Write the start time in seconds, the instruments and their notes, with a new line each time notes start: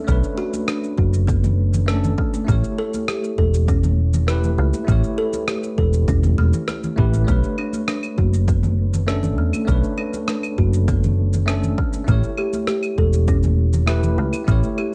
Already playing: tine electric piano A3 C#4 D4 A4
0.04 fingered electric bass B1, tine electric piano A3 C#5, kalimba A3, kick, shaker
0.09 tine electric piano D4 B4
0.23 shaker
0.38 kalimba F#4
0.54 high conga, shaker
0.68 kalimba D4, cross-stick, shaker
0.84 shaker
0.98 fingered electric bass F#1, kalimba F#4, kick
1.14 shaker
1.27 kalimba B3, kick, shaker
1.44 high conga, low conga, shaker
1.74 low conga, shaker
1.86 tine electric piano A3 C#4 D4 A4, cross-stick, high conga, shaker
2.04 low conga, shaker
2.18 kalimba A3, kick
2.34 high conga, shaker
2.45 fingered electric bass A1, tine electric piano A3 E4, kalimba A3, kick
2.49 tine electric piano G4 C#5, shaker
2.64 shaker
2.78 kalimba A4
2.94 high conga, shaker
3.08 kalimba G4, cross-stick, shaker
3.24 shaker
3.38 fingered electric bass E1, kalimba A4, kick, high conga
3.54 shaker
3.68 kalimba C#4, kick, shaker
3.83 high conga, low conga, shaker
4.14 low conga, shaker
4.27 tine electric piano A3 E4 G4 B4, cross-stick, high conga, shaker
4.44 low conga, shaker
4.58 fingered electric bass C#2, kalimba A3
4.74 high conga, shaker
4.85 fingered electric bass A1, tine electric piano A3 E4, kalimba A3, kick, shaker
4.90 tine electric piano G4 C#5
5.04 shaker
5.18 kalimba A4
5.33 high conga, shaker
5.48 kalimba G4, cross-stick, shaker
5.63 shaker
5.78 fingered electric bass E1, kalimba A4, kick
5.93 shaker
6.08 fingered electric bass E1, kalimba C#4, kick, shaker
6.23 high conga, low conga, shaker
6.38 fingered electric bass E1, kalimba A3
6.53 low conga, shaker
6.68 kalimba A3, cross-stick, high conga, shaker
6.83 low conga, shaker
6.96 fingered electric bass A1, tine electric piano A3 E4 G4 B4, kalimba G4, kick
7.13 high conga, shaker
7.24 fingered electric bass B1, tine electric piano A3 C#5, kalimba A3, kick, shaker
7.29 tine electric piano D4 B4
7.43 shaker
7.58 kalimba D4, claves
7.73 high conga, shaker
7.88 kalimba D4, cross-stick, shaker
8.03 claves, shaker
8.18 fingered electric bass F#1, kalimba F#4, kick, high conga
8.33 shaker
8.48 kalimba B3, kick, shaker
8.63 high conga, low conga, shaker
8.94 low conga, shaker
9.07 tine electric piano A3 C#4 D4 A4, cross-stick, high conga, shaker
9.23 low conga, shaker
9.38 fingered electric bass E2, kalimba A3
9.53 high conga, claves, shaker
9.65 fingered electric bass B1, tine electric piano A3 C#5, kalimba A3, kick, shaker
9.69 tine electric piano D4 B4
9.84 shaker
9.98 kalimba D4, claves
10.14 high conga, shaker
10.28 kalimba D4, cross-stick, shaker
10.43 claves, shaker
10.58 fingered electric bass F#1, kalimba F#4, kick
10.73 shaker
10.88 kalimba B3, kick, shaker
11.04 high conga, low conga, shaker
11.33 low conga, shaker
11.46 tine electric piano A3 C#4 D4 A4, cross-stick, high conga, shaker
11.63 low conga, shaker
11.78 kalimba A3, kick
11.93 high conga, shaker
12.04 fingered electric bass A1, tine electric piano A3 E4, kick, shaker
12.08 kalimba A3, tine electric piano G4 C#5
12.23 shaker
12.38 kalimba G4, claves
12.53 high conga, shaker
12.67 kalimba G4, cross-stick, shaker
12.83 claves, shaker
12.98 fingered electric bass E1, kalimba A4, kick, high conga
13.13 shaker
13.28 kalimba C#4, kick, shaker
13.43 high conga, low conga, shaker
13.73 low conga, shaker
13.86 tine electric piano A3 E4 G4 B4, cross-stick, high conga, shaker
14.03 low conga, shaker
14.18 fingered electric bass C#2, kalimba A3
14.33 high conga, claves, shaker
14.44 fingered electric bass A1, tine electric piano A3 E4, kalimba A3, kick, shaker
14.49 tine electric piano G4 C#5
14.63 shaker
14.78 kalimba G4, claves